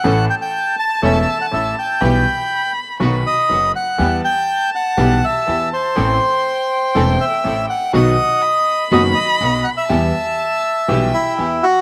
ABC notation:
X:1
M:4/4
L:1/16
Q:1/4=122
K:Em
V:1 name="Violin"
a16 | b8 b6 z2 | a16 | g16 |
f4 b12 | a8 g6 z2 |]
V:2 name="Bandoneon"
f2 g g3 a2 e3 f e2 g2- | g6 z4 ^d4 f2- | f2 g4 f4 e4 c2- | c8- c2 e4 f2 |
^d8 d2 d4 f e- | e8- e2 E4 F2 |]
V:3 name="String section"
[^CEA]2 z6 [CEA]2 z2 [CEA]2 z2 | [B,EG]2 z6 [B,^DF]2 z2 [B,DF]2 z2 | [B,EG]2 z6 [B,EG]2 z2 [B,EG]2 z2 | [CEA]2 z6 [CEA]2 z2 [CEA]2 z2 |
[B,^DF]2 z6 [B,DF]2 z2 [B,DF]2 z2 | [B,EG]2 z6 [B,EG]2 z2 [B,EG]2 z2 |]
V:4 name="Upright piano" clef=bass
[A,,,A,,E,A,^CA]2 z6 [E,,,E,,E,A,CA]2 z2 [A,,,A,,]2 z2 | [B,,,B,,E,G,B,G]2 z6 [B,,,B,,^D,F,B,F]2 z2 [F,,,F,,]2 z2 | [E,,E,G,B,G]2 z6 [B,,,B,,E,G,B,G]2 z2 [E,,E,]2 z2 | [A,,,A,,E,A,CA]2 z6 [E,,,E,,E,A,CA]2 z2 [A,,,A,,]2 z2 |
[B,,,B,,^D,F,B,F]2 z6 [F,,,F,,D,F,B,F]2 z2 [B,,,B,,]2 z2 | [E,,E,G,B,G]2 z6 [B,,,B,,E,G,B,G]2 z2 [E,,E,]2 z2 |]
V:5 name="Upright bass" clef=bass
A,,,2 z6 E,,,2 z2 A,,,2 z2 | B,,,2 z6 B,,,2 z2 F,,,2 z2 | E,,2 z6 B,,,2 z2 E,,2 z2 | A,,,2 z6 E,,,2 z2 A,,,2 z2 |
B,,,2 z6 F,,,2 z2 B,,,2 z2 | E,,2 z6 B,,,2 z2 E,,2 z2 |]